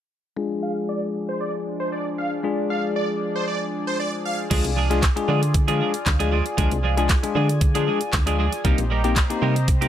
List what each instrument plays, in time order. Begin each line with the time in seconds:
0.37 analog synth pad F3 G#3 D4 G#4 D5, tine electric piano G#3 D4 F4 G#4
0.63 supersaw synth F5
0.89 supersaw synth D5
1.29 supersaw synth C5
1.40 supersaw synth D5
1.80 supersaw synth C5
1.92 supersaw synth D5
2.18 supersaw synth F5
2.43 tine electric piano G#3 D4 F4 G#4
2.70 supersaw synth F5
2.96 supersaw synth D5
3.36 supersaw synth C5
3.47 supersaw synth D5
3.87 supersaw synth C5
4.00 supersaw synth D5
4.25 supersaw synth F5
4.50 fm bass D2, clean electric guitar F3 G#3 D4 G#4, tine electric piano G#3 D4 F4 G#4, analog synth pad F4 G#4 D5 G#5, kick, closed hi-hat, crash
4.65 fm bass C2, closed hi-hat
4.76 clean electric guitar F3 G#3 D4 G#4
4.90 clean electric guitar F3 G#3 D4 G#4, tine electric piano G#3 D4 F4 G#4, closed hi-hat
5.03 kick, snare, clap, closed hi-hat
5.16 tine electric piano G#3 D4 F4 G#4, muted clean electric guitar stroke, closed hi-hat
5.28 fm bass D3, clean electric guitar F3 G#3 D4 G#4
5.42 muted clean electric guitar stroke, closed hi-hat
5.54 muted clean electric guitar stroke, kick, closed hi-hat
5.68 clean electric guitar F3 G#3 D4 G#4, tine electric piano G#3 D4 F4 G#4, closed hi-hat
5.80 clean electric guitar F3 G#3 D4 G#4
5.94 muted clean electric guitar stroke, closed hi-hat
6.06 fm bass D2, muted clean electric guitar stroke, kick, snare, clap, closed hi-hat
6.19 clean electric guitar F3 G#3 D4 G#4, tine electric piano G#3 D4 F4 G#4, closed hi-hat
6.31 clean electric guitar F3 G#3 D4 G#4
6.45 muted clean electric guitar stroke, closed hi-hat
6.57 fm bass D2, clean electric guitar F3 G#3 D4 G#4, tine electric piano G#3 D4 F4 G#4, kick, closed hi-hat
6.71 fm bass C2, closed hi-hat
6.83 clean electric guitar F3 G#3 D4 G#4
6.97 clean electric guitar F3 G#3 D4 G#4, tine electric piano G#3 D4 F4 G#4, closed hi-hat
7.09 kick, snare, clap, closed hi-hat
7.23 tine electric piano G#3 D4 F4 G#4, muted clean electric guitar stroke, closed hi-hat
7.35 fm bass D3, clean electric guitar F3 G#3 D4 G#4
7.49 muted clean electric guitar stroke, closed hi-hat
7.61 muted clean electric guitar stroke, kick, closed hi-hat
7.75 clean electric guitar F3 G#3 D4 G#4, tine electric piano G#3 D4 F4 G#4, closed hi-hat
7.87 clean electric guitar F3 G#3 D4 G#4
8.01 muted clean electric guitar stroke, closed hi-hat
8.13 fm bass D2, muted clean electric guitar stroke, kick, snare, clap, closed hi-hat
8.26 clean electric guitar F3 G#3 D4 G#4, tine electric piano G#3 D4 F4 G#4, closed hi-hat
8.38 clean electric guitar F3 G#3 D4 G#4
8.52 muted clean electric guitar stroke, closed hi-hat
8.64 fm bass C2, clean electric guitar G3 A#3 D#4 G4, tine electric piano A#3 C4 D#4 G4, analog synth pad G4 C5 D#5 A#5, kick, closed hi-hat
8.78 fm bass A#1, closed hi-hat
8.90 clean electric guitar G3 A#3 D#4 G4
9.04 clean electric guitar G3 A#3 D#4 G4, tine electric piano A#3 C4 D#4 G4, closed hi-hat
9.16 kick, snare, clap, closed hi-hat
9.30 tine electric piano A#3 C4 D#4 G4, muted clean electric guitar stroke, closed hi-hat
9.42 fm bass C3, clean electric guitar G3 A#3 D#4 G4
9.56 muted clean electric guitar stroke, closed hi-hat
9.68 muted clean electric guitar stroke, kick, closed hi-hat
9.81 clean electric guitar G3 A#3 D#4 G4, tine electric piano A#3 C4 D#4 G4, closed hi-hat